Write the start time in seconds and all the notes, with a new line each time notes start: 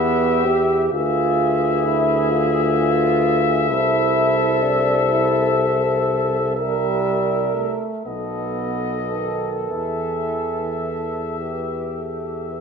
Already playing: E2 B3 G4 B4 E5
0.46 G4
0.92 D2 F4 G#4 B4 E5
1.84 E4
2.30 F4
3.69 C2 E4 A4 C5
4.63 D4
5.10 E4
6.56 G3 A#4 E5
7.54 A3
8.04 B1 B3 A4 B4 D#5
9.13 D#3
9.70 E2 E3 E5
11.38 G4 B4
11.94 A4
12.49 B4